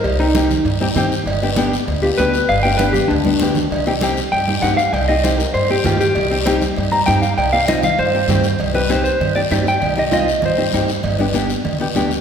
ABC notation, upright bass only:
X:1
M:4/4
L:1/8
Q:1/4=197
K:Cm
V:1 name="Upright bass" clef=bass
C,,4 G,,2 G,,2 | G,,,4 D,,2 D,,2 | G,,,4 D,,2 D,,2 | C,,4 G,,2 G,,2 |
C,,4 G,,2 G,,2 | C,,4 G,,2 G,,2 | C,,4 G,,2 G,,2 | C,,4 G,,2 G,,2 |
C,,4 G,,2 G,,2 | G,,,4 D,,2 D,,2 |]